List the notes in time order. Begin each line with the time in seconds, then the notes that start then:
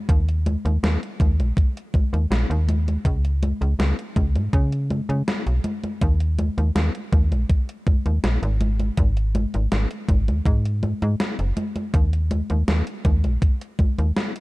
0.09 D#2, kick, closed hi-hat, high conga
0.29 closed hi-hat
0.46 closed hi-hat, high conga
0.65 D#2, closed hi-hat, high conga
0.83 D#2, snare, closed hi-hat, high conga
1.03 closed hi-hat
1.20 D#2, kick, closed hi-hat, high conga
1.39 A#1, closed hi-hat, high conga
1.57 kick, closed hi-hat, high conga
1.77 closed hi-hat
1.94 kick, closed hi-hat, high conga
2.13 D#2, closed hi-hat, high conga
2.31 A#1, snare, closed hi-hat, high conga
2.50 D#2, closed hi-hat
2.69 closed hi-hat, high conga
2.88 closed hi-hat, high conga
3.05 C#2, kick, closed hi-hat, high conga
3.25 closed hi-hat
3.43 closed hi-hat, high conga
3.61 C#2, closed hi-hat, high conga
3.79 C#2, snare, closed hi-hat, high conga
3.99 closed hi-hat
4.16 C#2, kick, closed hi-hat, high conga
4.35 G#2, closed hi-hat, high conga
4.53 C#3, kick, closed hi-hat, high conga
4.72 closed hi-hat
4.90 closed hi-hat, high conga
5.09 C#3, closed hi-hat, high conga
5.28 snare, closed hi-hat, high conga
5.46 B1, closed hi-hat
5.64 closed hi-hat, high conga
5.84 closed hi-hat, high conga
6.01 D#2, kick, closed hi-hat, high conga
6.20 closed hi-hat
6.39 closed hi-hat, high conga
6.58 D#2, closed hi-hat, high conga
6.75 D#2, snare, closed hi-hat, high conga
6.95 closed hi-hat
7.12 D#2, kick, closed hi-hat, high conga
7.32 A#1, closed hi-hat, high conga
7.50 kick, closed hi-hat, high conga
7.69 closed hi-hat
7.87 kick, closed hi-hat, high conga
8.06 D#2, closed hi-hat, high conga
8.24 A#1, snare, closed hi-hat, high conga
8.42 G#1, closed hi-hat
8.61 closed hi-hat, high conga
8.80 closed hi-hat, high conga
8.97 G#1, kick, closed hi-hat, high conga
9.17 closed hi-hat
9.35 closed hi-hat, high conga
9.54 G#1, closed hi-hat, high conga
9.72 G#1, snare, closed hi-hat, high conga
9.91 closed hi-hat
10.08 G#1, kick, closed hi-hat, high conga
10.28 D#2, closed hi-hat, high conga
10.45 G#2, kick, closed hi-hat, high conga
10.65 closed hi-hat
10.83 closed hi-hat, high conga
11.02 G#2, closed hi-hat, high conga
11.20 snare, closed hi-hat, high conga
11.39 F#1, closed hi-hat
11.57 closed hi-hat, high conga
11.76 closed hi-hat, high conga
11.94 D#2, kick, closed hi-hat, high conga
12.13 closed hi-hat
12.31 closed hi-hat, high conga
12.50 D#2, closed hi-hat, high conga
12.68 D#2, snare, closed hi-hat, high conga
12.87 closed hi-hat
13.05 D#2, kick, closed hi-hat, high conga
13.24 A#1, closed hi-hat, high conga
13.42 kick, closed hi-hat, high conga
13.61 closed hi-hat
13.79 kick, closed hi-hat, high conga
13.98 D#2, closed hi-hat, high conga
14.16 snare, closed hi-hat, high conga
14.36 closed hi-hat